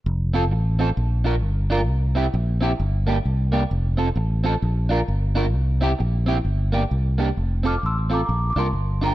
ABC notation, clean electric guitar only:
X:1
M:4/4
L:1/16
Q:"Swing" 1/4=131
K:F
V:1 name="Clean electric guitar"
z2 [CFA] z3 [CFA] z3 [DFB] z3 [DFB] z | z2 [CEG] z3 [CEG] z3 [B,DG] z3 [B,DG] z | z2 [CFA] z3 [CFA] z3 [DFB] z3 [DFB] z | z2 [CEG] z3 [CEG] z3 [B,DG] z3 [B,DG] z |
z2 [CFA] z3 [CFA] z3 [DFB] z3 [DFB] z |]